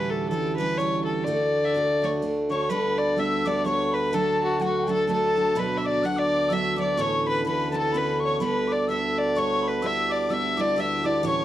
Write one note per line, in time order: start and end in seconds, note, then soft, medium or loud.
0.00 2.70 D2 medium
0.00 0.32 A2 medium
0.00 2.69 D3 medium
0.00 0.30 E3 medium
0.00 0.31 G3 medium
0.00 0.32 C#4 medium
0.00 0.33 G4 medium
0.00 0.11 B4 medium
0.10 0.28 A4 medium
0.29 0.57 E3 medium
0.29 0.58 G3 medium
0.29 0.56 A4 medium
0.33 0.59 C#4 medium
0.33 0.59 G4 medium
0.56 0.78 E3 medium
0.56 0.79 G3 medium
0.56 0.80 C#4 medium
0.56 0.79 B4 medium
0.61 0.80 G4 medium
0.77 1.26 E3 soft
0.77 1.27 G3 medium
0.77 1.28 C#4 medium
0.77 1.28 G4 medium
0.77 1.04 C#5 medium
1.04 1.26 A4 medium
1.24 1.74 D3 medium
1.24 1.75 A3 medium
1.24 1.65 D5 medium
1.28 1.76 D4 medium
1.28 1.75 F#4 medium
1.64 2.03 D5 loud
1.64 1.67 E5 medium
1.74 2.01 D3 medium
1.74 2.02 A3 medium
1.74 2.03 D4 soft
1.74 2.03 F#4 medium
2.02 2.21 D3 soft
2.02 2.21 A3 medium
2.02 2.22 D4 medium
2.02 2.23 F#4 medium
2.02 2.07 C#5 medium
2.02 2.06 D5 medium
2.22 2.48 D3 soft
2.22 2.49 A3 medium
2.22 2.50 D4 medium
2.22 2.51 F#4 soft
2.49 2.69 D3 soft
2.49 2.70 A3 soft
2.49 2.70 D4 medium
2.49 2.71 F#4 medium
2.49 2.71 C#5 medium
2.49 2.69 C#6 medium
2.70 8.39 D2 medium
2.70 8.39 D3 medium
2.70 3.15 G3 medium
2.70 3.16 B3 medium
2.70 3.18 D4 medium
2.70 3.19 A4 medium
2.70 2.99 B4 medium
2.70 3.14 B5 medium
2.98 3.21 D5 medium
3.16 3.44 G3 soft
3.16 3.45 B3 soft
3.16 3.45 D4 medium
3.16 3.45 A4 soft
3.16 3.49 E5 medium
3.16 3.47 E6 medium
3.45 3.64 G3 medium
3.45 3.65 B3 medium
3.45 3.65 D4 medium
3.45 3.66 A4 medium
3.45 3.65 D5 medium
3.45 3.68 D6 medium
3.65 4.12 G3 soft
3.65 4.13 B3 medium
3.65 4.14 D4 medium
3.65 4.14 A4 medium
3.65 3.95 C#5 medium
3.65 3.93 C#6 medium
3.92 4.16 B4 medium
3.92 4.12 B5 medium
4.12 5.55 D3 medium
4.12 4.59 F#3 medium
4.12 4.60 A3 medium
4.12 4.61 D4 medium
4.12 4.62 F#4 medium
4.12 4.40 A4 medium
4.12 4.63 A5 medium
4.43 4.60 F#4 medium
4.60 4.86 F#3 medium
4.60 4.87 A3 soft
4.60 4.88 D4 medium
4.60 4.88 F#4 medium
4.60 4.81 F#5 medium
4.64 4.87 F#4 medium
4.82 4.90 G5 soft
4.87 5.06 F#3 medium
4.87 5.07 A3 medium
4.87 5.08 D4 medium
4.87 5.08 F#4 medium
4.87 5.08 A5 medium
4.91 5.08 A4 medium
5.07 5.35 F#3 medium
5.07 5.35 A3 medium
5.07 5.35 D4 medium
5.07 5.36 F#4 medium
5.07 5.58 A5 medium
5.13 5.61 A4 medium
5.36 5.55 F#3 soft
5.36 5.56 A3 soft
5.36 5.56 D4 medium
5.36 5.56 F#4 soft
5.55 6.03 B2 medium
5.55 6.02 F#3 medium
5.55 6.04 B3 medium
5.55 6.03 D4 medium
5.55 6.03 F#4 medium
5.55 5.83 B5 medium
5.59 5.79 B4 medium
5.77 5.87 E5 medium
5.83 6.07 D5 medium
5.83 6.04 D6 medium
6.03 6.49 F#3 medium
6.03 6.51 B3 medium
6.03 6.51 D4 medium
6.03 6.51 F#4 medium
6.03 6.20 F#5 medium
6.03 6.18 F#6 medium
6.16 6.54 D5 loud
6.16 6.51 D6 medium
6.49 6.75 F#3 medium
6.49 6.77 B3 medium
6.49 6.77 D4 medium
6.49 6.78 F#4 medium
6.49 6.78 E5 loud
6.49 6.79 E6 medium
6.76 6.97 F#3 soft
6.76 6.98 B3 medium
6.76 6.98 D4 medium
6.76 6.98 F#4 soft
6.76 7.02 D5 medium
6.76 6.93 D6 medium
6.93 6.99 D6 medium
6.97 7.45 A2 medium
6.97 7.44 E3 medium
6.97 7.45 B3 medium
6.97 7.46 C#4 medium
6.97 7.47 A4 medium
6.97 7.26 C#5 loud
6.97 7.25 C#6 medium
7.26 7.45 B4 medium
7.26 7.44 B5 medium
7.45 7.71 E3 medium
7.45 7.72 B3 soft
7.45 7.73 C#4 medium
7.45 7.73 A4 medium
7.45 7.72 B4 medium
7.45 7.70 B5 medium
7.71 7.92 E3 soft
7.71 7.93 B3 soft
7.71 7.93 C#4 medium
7.71 7.94 A4 medium
7.71 7.94 A5 medium
7.77 7.99 A4 medium
7.92 8.40 E3 medium
7.92 8.41 B3 medium
7.92 8.41 C#4 medium
7.92 8.41 A4 medium
7.92 8.22 B5 medium
7.97 8.22 B4 medium
8.20 8.39 C#6 medium
8.25 8.41 C#5 medium
8.40 11.45 D2 medium
8.40 11.45 D3 medium
8.40 8.88 G3 medium
8.40 8.90 B3 medium
8.40 8.88 D4 medium
8.40 8.88 A4 medium
8.40 8.69 B5 medium
8.45 8.73 B4 medium
8.68 8.89 D6 medium
8.72 8.90 D5 medium
8.88 9.35 G3 soft
8.88 9.35 B3 soft
8.88 9.36 D4 medium
8.88 9.37 A4 medium
8.88 9.20 E5 medium
8.88 9.15 E6 medium
9.18 9.40 D5 medium
9.35 9.82 G3 soft
9.35 9.81 B3 medium
9.35 9.83 D4 medium
9.35 9.84 A4 medium
9.35 9.69 C#5 loud
9.35 9.64 C#6 medium
9.63 9.84 B5 medium
9.68 9.88 B4 medium
9.82 10.29 G3 medium
9.82 10.29 B3 medium
9.82 10.31 E4 medium
9.82 10.31 G4 medium
9.82 10.09 E6 medium
9.86 10.12 E5 loud
10.09 10.35 D5 medium
10.09 10.32 D6 medium
10.29 10.56 G3 soft
10.29 10.56 B3 medium
10.29 10.58 E4 medium
10.29 10.58 G4 medium
10.29 10.62 E5 medium
10.29 10.59 E6 medium
10.57 10.75 G3 medium
10.57 10.77 B3 medium
10.57 10.77 E4 medium
10.57 10.78 G4 medium
10.57 10.77 D6 medium
10.61 10.81 D5 loud
10.76 11.02 G3 medium
10.76 11.03 B3 medium
10.76 11.04 E4 medium
10.76 11.05 G4 medium
10.76 11.08 E5 medium
10.76 11.06 E6 medium
11.03 11.22 G3 soft
11.03 11.23 B3 soft
11.03 11.24 E4 medium
11.03 11.23 G4 soft
11.03 11.25 D5 medium
11.03 11.28 D6 medium
11.23 11.45 A2 medium
11.23 11.45 E3 medium
11.23 11.45 G3 medium
11.23 11.45 C#4 medium
11.23 11.45 G4 medium
11.23 11.45 C#5 medium
11.23 11.45 C#6 medium